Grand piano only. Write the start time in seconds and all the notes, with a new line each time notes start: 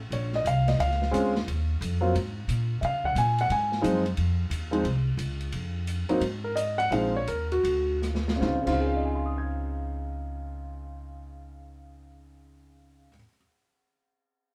0.13 C#5
0.35 D#5
0.47 F5
0.68 D#5
0.80 F5
1.11 G#3 C4 C#4 F4
2.01 F#3 A#3 C4 F4
2.81 E5 F5
3.05 F#5
3.18 G#5
3.41 F#5
3.52 G#5
3.81 F3 G#3 C4 D#4
4.71 F3 G#3 C4 D#4
6.09 F#3 A#3 C4 D#4
6.44 A#4
6.56 D#5
6.78 F#5
6.91 F3 G#3 C4 D#4 F5
7.16 C#5
7.28 A#4
7.52 F#4
8.36 C#3 C4
8.41 D#4 F4
8.47 F4
8.61 C#3 C4
8.67 D#4 F4
8.72 F4
8.80 G#4
8.87 C5
8.96 D#5
9.05 G#5
9.15 C6
9.26 D#6
9.38 G#6